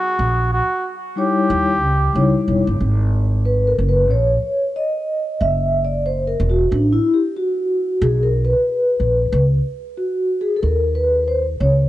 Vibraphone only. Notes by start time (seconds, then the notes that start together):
1.16 G3 D#4 E4 C#5
2.13 G3 D#4 E4 C#5
3.45 B4
3.67 A#4
3.89 B4
4.11 C#5
4.76 D#5
5.41 E5
5.85 D5
6.06 C5
6.27 A#4
6.50 F#4
6.71 D4
6.93 E4
7.14 G4
7.36 F#4
8.02 G#4
8.23 A#4
8.45 B4
9.98 F#4
10.41 G#4
10.56 A4
10.63 A#4
10.95 B4
11.28 C5
11.60 C#5